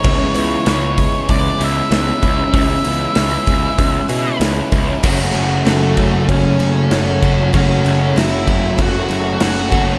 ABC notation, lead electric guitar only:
X:1
M:4/4
L:1/16
Q:1/4=96
K:F#m
V:1 name="Lead electric guitar"
c8 d2 e2 e4 | e12 z4 | z4 A,4 C8 | C4 E4 F4 F3 z |]